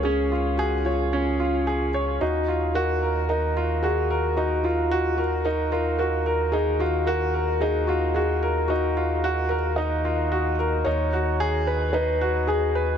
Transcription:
X:1
M:4/4
L:1/8
Q:1/4=111
K:Ebm
V:1 name="Felt piano"
A2 G F4 z | G2 B2 B2 A2 | G F2 G B B B2 | A G B2 A G A2 |
G3 B e3 z | d4 c2 A2 |]
V:2 name="Grand piano"
D F A d D F A d | E F G B E F G B | E F G B E F G B | E F G B E F G B |
E F G B E F G B | E G A c E G A c |]
V:3 name="Analog synth bass" clef=bass
D,,8 | E,,8- | E,,8- | E,,8- |
E,,8 | E,,8 |]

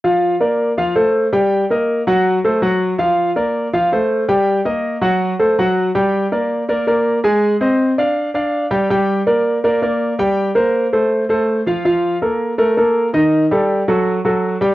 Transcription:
X:1
M:4/4
L:1/8
Q:1/4=163
K:Gm
V:1 name="Grand piano"
[F,Ff]2 [B,Bd]2 [F,Ff] [A,Ac]2 [G,Gg]- | [G,Gg] [B,Be]2 [^F,^F^f]2 [A,Ac] [F,Ff]2 | [F,Ff]2 [B,Bd]2 [F,Ff] [A,Ac]2 [G,Gg]- | [G,Gg] [B,Be]2 [^F,^F^f]2 [A,Ac] [F,Ff]2 |
[G,Gg]2 [B,Bd]2 [B,Bd] [B,Bd]2 [_A,_A_a]- | [_A,_A_a] [Cce]2 [Ddf]2 [Ddf]2 [G,Gg] | [G,Gg]2 [B,Bd]2 [B,Bd] [B,Bd]2 [G,Gg]- | [G,Gg] [B,Bc]2 [A,Ac]2 [A,Ac]2 [F,Ff] |
[F,Ff]2 [B,AB]2 [A,AB] [B,AB]2 [E,Ee]- | [E,Ee] [G,GA]2 [^F,^FA]2 [F,FA]2 [G,Gg] |]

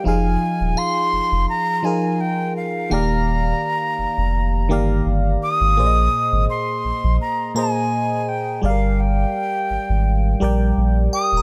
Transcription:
X:1
M:4/4
L:1/16
Q:"Swing 16ths" 1/4=84
K:Fdor
V:1 name="Flute"
a4 c'4 b2 a2 g2 f2 | b12 z2 e'2- | e'4 c'4 b2 a4 g2 | f2 g8 z4 e'2 |]
V:2 name="Synth bell"
z4 f12 | f12- f z3 | z8 z2 b6- | b2 z12 g b |]
V:3 name="FM electric piano"
[F,EFAf]6 z4 [F,EFAB]4 z2 | [E,B,Gdf]6 z4 [E,B,Gdf]4 z2 | [B,,B,Acde]6 z4 [B,,B,Ace]4 z2 | [G,GABdf]6 z4 [G,GBdg]4 z2 |]
V:4 name="Sub bass" clef=bass
F,,,2 z E,,, z2 F,,, F,,, z8 | E,,,4 z2 F,,, F,,,3 G,,,2 G,,,2 z A,,, | B,,,2 z A,,, z2 B,,, B,,, z8 | G,,,4 z2 A,,, A,,,3 B,,,2 B,,,2 z E,,, |]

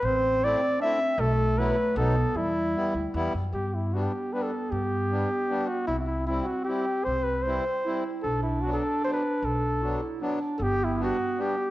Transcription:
X:1
M:3/4
L:1/16
Q:1/4=153
K:Em
V:1 name="Flugelhorn"
c4 d4 e4 | A4 B4 A4 | E8 z4 | [K:G] G2 E2 F G3 B A3 |
G8- G2 F2 | E2 E2 E2 F2 G4 | c2 B2 c6 z2 | A2 E2 F A3 c B3 |
A6- A z4 z/2 A/2 | G2 E2 F4 G4 |]
V:2 name="Clarinet"
C8 D2 C2 | A,8 B,4 | G,8 z4 | [K:G] B,12- |
B,12 | C12 | C6 z2 E4 | D12- |
D4 F2 E2 D4 | B,12 |]
V:3 name="Accordion"
z4 [A,CE]2 z2 [A,CE]2 z2 | z4 [F,B,E]2 z2 [F,B,^D]2 z2 | z4 [G,B,E]2 z2 [G,B,E]2 z2 | [K:G] z4 [G,B,D]2 z2 [G,B,D]2 z2 |
z4 [G,B,D]2 z2 [G,B,D]2 z2 | z4 [G,CE]2 z2 [G,CE]2 z2 | z4 [G,CE]2 z2 [G,CE]2 z2 | z4 [F,B,D]2 z2 [F,B,D]2 z2 |
z4 [F,B,D]2 z2 [F,B,D]2 z2 | z4 [G,B,D]2 z2 [G,B,D]2 z2 |]
V:4 name="Upright bass" clef=bass
A,,,8 z4 | B,,,8 B,,,4 | E,,6 D,,2 E,,2 F,,2 | [K:G] G,,8 z4 |
G,,8 z4 | C,,8 z4 | C,,8 z4 | B,,,8 z4 |
B,,,8 z4 | G,,,8 z4 |]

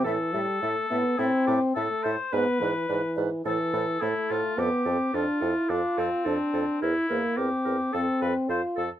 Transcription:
X:1
M:4/4
L:1/8
Q:1/4=107
K:Am
V:1 name="Flute"
e e e e e e e e | d d d d c c c c | c c c c c c c c | c c c c f f f f |]
V:2 name="Clarinet"
A A A A A A A A | B B B B A A A A | A A A A A A A A | _B B B B A A A A |]
V:3 name="Oboe"
A4 E G A c | B3 z A2 E F | G2 F2 D C3 | E2 G2 A B c A |]
V:4 name="French horn"
E, G, A, B, C2 A, z | B, E, E,2 E,2 A,2 | B, C D E F2 D2 | E _B, C2 C2 F z |]
V:5 name="Bassoon" clef=bass
A,, A,, A,, A,, A,, A,, A,, A,, | ^G,, G,, G,, G,, A,, A,, A,, A,, | F,, F,, F,, F,, F,, F,, F,, F,, | E,, E,, E,, E,, F,, F,, F,, F,, |]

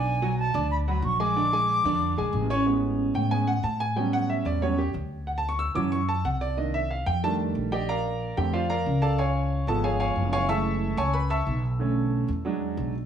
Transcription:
X:1
M:4/4
L:1/8
Q:1/4=184
K:A
V:1 name="Flute"
g2 a2 b b c' d'- | d'6 z2 | z8 | z8 |
z8 | z8 | z8 | z8 |
z8 | z8 |]
V:2 name="Grand piano"
[Ddd'] [F,Ff]2 [Ddd']2 [F,Ff]2 [G,Gg] | [D,Dd] [_A,_A_a]2 [D,Dd]2 [A,Aa]2 [Ccc'] | z3 =g ^g f a g | =g f e d c =G z2 |
(3f a c' e' d' c' a f d | _e =e =f =g a z2 [=Gd_eg] | [_Bd=f_b]3 [=G=g] [=F=cdf] [Bdfb]2 [Adfa] | [c^egc']3 [Aa] [Gceg] [cegc']2 [cegc'] |
[eac'e']3 [cgac'] [Bb] [eac'e']2 z | z8 |]
V:3 name="Grand piano"
z8 | z8 | [G,B,C]4 [G,B,C] z3 | [F,=G,B,C]4 [F,G,B,C] z3 |
z3 [E,F,C] z4 | [_E,_B,D] z3 [E,=G,A,D]3 z | z3 [D,A,=C] z4 | z3 [^E,G,B,]4- [E,G,B,] |
[E,G,A,]3 z4 z | [D,A,C]3 z [F,G,D]3 z |]
V:4 name="Upright bass" clef=bass
B,,,3 D,,3 _B,,,2- | _B,,,3 =F,,2 B,,, A,,,2- | A,,,3 A,,3 A,,2- | A,,3 E,,3 D,,2- |
D,,3 F,,3 =C,,2- | =C,,3 =F,,3 _B,,,2- | _B,,,3 =F,,3 C,,2- | C,,3 G,,,3 F,,,2- |
F,,,3 C,,3 B,,,2- | B,,,3 E,,3 B,,,2 |]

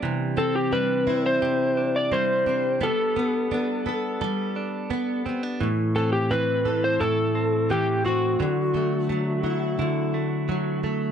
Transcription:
X:1
M:4/4
L:1/16
Q:1/4=86
K:G
V:1 name="Electric slide guitar"
z2 A G B3 c4 d c4 | A12- A2 z2 | z2 A G B3 c A4 G2 F2- | F12- F2 z2 |]
V:2 name="Clean electric guitar"
E,2 C2 D2 C2 G2 D2 C2 D2 | B,2 B,2 D2 B,2 A2 D2 B,2 C D | E,2 E,2 C2 E,2 E2 C2 E,2 C2 | F,2 F,2 A,2 F,2 E2 A,2 F,2 A,2 |]
V:3 name="Steel-string acoustic guitar" clef=bass
C,2 C2 G,2 E2 C,4 G,2 C2 | G,2 B,2 B,2 A2 G,4 B,2 B,2 | A,,2 C2 E,2 A2 A,,4 E,2 C2 | D,2 A,2 F,2 E2 D,4 F,2 A,2 |]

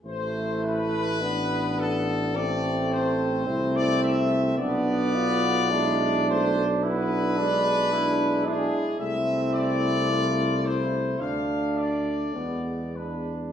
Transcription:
X:1
M:4/4
L:1/16
Q:1/4=54
K:Am
V:1 name="Trumpet section"
c2 B4 A2 d2 c3 d e2 | d6 c2 B6 ^G2 | e2 d4 c2 f2 d4 B2 |]
V:2 name="Euphonium"
E4 D4 C4 E4 | D2 F2 E3 z D4 D2 E2 | E8 D4 B,3 z |]
V:3 name="Flugelhorn"
z8 A,4 C4 | B,4 D4 E2 D2 E2 D2 | C4 F2 E2 D4 B,2 D2 |]
V:4 name="Trombone"
A,4 B,4 A,4 A,4 | B,4 ^G,2 A,2 B,2 G,2 G,4 | A,8 A,4 ^G,2 G,2 |]
V:5 name="Tuba" clef=bass
A,,,12 C,,4 | B,,,12- B,,,3 z | C,,8 D,,4 E,,4 |]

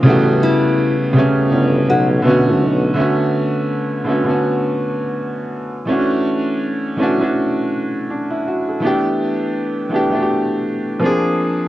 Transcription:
X:1
M:4/4
L:1/16
Q:"Swing 16ths" 1/4=82
K:Bm
V:1 name="Nylon-string guitar"
z2 E3 z4 z F z4 z | z16 | z16 | z16 |]
V:2 name="Upright piano"
z16 | z16 | z12 D E F A- | A z12 z3 |]
V:3 name="Upright piano"
[C,G,A,B,F]4- [C,G,A,B,F] z [C,G,A,B,C]6 [D,A,B,CF]4 | [D,A,B,CF]4- [D,A,B,CF] z [D,A,B,CF] [D,A,B,CF]6- [D,A,B,CF] z2 | [E,A,CDF]4- [E,A,CDF] z [E,A,CDF] [E,A,CDF]6 z3 | [E,A,B,DG]4- [E,A,B,DG] z [E,A,B,DG] [E,A,B,DFG]4- [E,A,B,DFG] [^E,^A,^B,D^G]4 |]
V:4 name="Tuba" clef=bass
A,,,2 z6 G,,,2 B,,,2 B,,2 B,,,2 | z16 | z16 | z16 |]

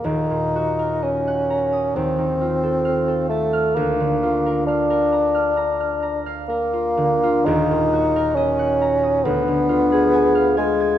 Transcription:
X:1
M:4/4
L:1/16
Q:1/4=66
K:Ebm
V:1 name="Harp"
[E,,,E,,Be] B,, G B e g b e' E,, E, F =A f A =a f' | =D,, =D, F B f B b f' b f' b f B F D, F | [E,,,E,,] B,, G B e g b e' =D,, =D, F A a f a a' |]
V:2 name="Bassoon"
E4 D4 =C6 =A,2 | B,4 =D6 z2 B,4 | E4 D4 =B,6 A,2 |]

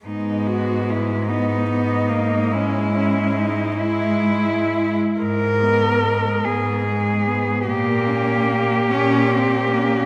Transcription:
X:1
M:12/8
L:1/16
Q:3/8=48
K:G#m
V:1 name="Cello"
D2 F2 E2 D6 C2 C2 D2 E4- E z | A6 G6 =G12 |]
V:2 name="Cello"
B,6 D6 E6 E4- E z | G,2 B,2 G,2 B,2 G,2 B,2 _B,2 _D2 B,2 D2 B,2 D2 |]
V:3 name="Cello"
G,6 B,2 B,2 A,2 G,6 G,4- G, z | z12 _B,6 _D2 ^B,2 _B,2 |]
V:4 name="Cello" clef=bass
G,,16- G,,6- G,, z | G,,6 G,,6 _B,,6 B,,6 |]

